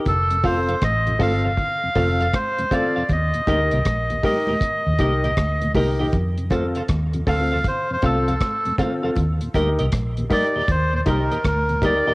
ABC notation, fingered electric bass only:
X:1
M:4/4
L:1/16
Q:"Swing 16ths" 1/4=79
K:Fmix
V:1 name="Fingered electric bass" clef=bass
F,,,4 A,,,2 G,,,2 z2 F,,,2 z4 | E,, z D,, C,, B,,,2 z3 E,, C,,2 D,,2 C,,2 | F,,4 E,,2 D,,2 z2 C,,2 z4 | E,, z D,, C,, B,,,2 z2 E,,2 C,, z D,,3 z |]